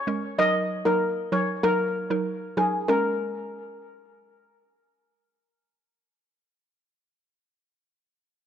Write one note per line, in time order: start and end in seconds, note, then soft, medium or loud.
0.00 0.20 C#5 medium
0.07 0.19 G#3 medium
0.07 0.19 C#4 medium
0.07 0.20 A#4 medium
0.38 0.82 F#3 loud
0.38 0.82 D#4 medium
0.38 0.82 A#4 loud
0.38 0.51 D#5 loud
0.85 0.97 F#3 medium
0.85 0.98 D#4 medium
0.85 0.98 A#4 medium
1.32 1.44 F#3 medium
1.32 1.44 D#4 medium
1.32 1.45 A#4 medium
1.32 1.45 C#5 medium
1.63 2.07 F#3 loud
1.63 2.07 D#4 medium
1.63 2.08 A#4 loud
1.63 2.07 A#4 loud
2.10 2.22 F#3 medium
2.10 2.23 D#4 medium
2.10 2.23 A#4 medium
2.57 2.69 F#3 medium
2.57 2.69 D#4 medium
2.57 2.70 G#4 medium
2.57 2.70 A#4 medium
2.88 6.84 G#3 medium
2.88 6.85 C#4 medium
2.88 4.72 A#4 medium
2.88 6.85 A#4 loud